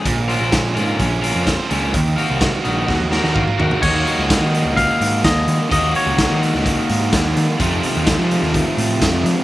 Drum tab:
CC |----------------|----------------|x---------------|----------------|
HH |x-x-x-x-x-x-x-x-|x-x-x-x---------|--x-x-x-x-x-x-x-|x-x-x-x-x-x-x-x-|
SD |----o-------o---|----o---o-oo----|----o-------o---|----o--o----o---|
T1 |----------------|---------o------|----------------|----------------|
T2 |----------------|------------oo--|----------------|----------------|
FT |----------------|--------------oo|----------------|----------------|
BD |o---o---o---o---|o---o---o---o---|o---o---o---o---|o---o---o---o---|

CC |----------------|
HH |x-x-x-x-x-x-x-x-|
SD |----o--o----o---|
T1 |----------------|
T2 |----------------|
FT |----------------|
BD |o---o---o---o---|